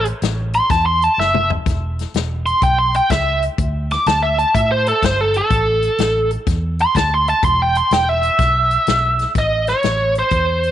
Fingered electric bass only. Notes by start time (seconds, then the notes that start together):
Already playing: A1
0.22 A1
0.70 E2
1.18 F#1
1.67 E1
2.14 E1
2.62 B1
3.10 C#2
3.58 D2
4.06 D2
4.55 A2
5.03 G1
5.51 A1
5.99 A1
6.47 E2
6.95 D2
7.43 E1
7.91 E1
8.39 B1
8.88 B1
9.35 A1
9.84 A1
10.31 E2